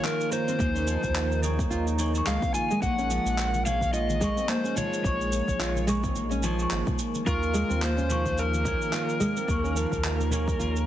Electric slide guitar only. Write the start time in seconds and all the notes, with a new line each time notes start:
0.05 A#4
0.33 C5
2.27 F5
2.55 G#5
2.82 F#5
3.66 F5
3.94 D#5
4.50 C5
4.78 C#5
7.27 A#4
7.83 C5
8.39 A#4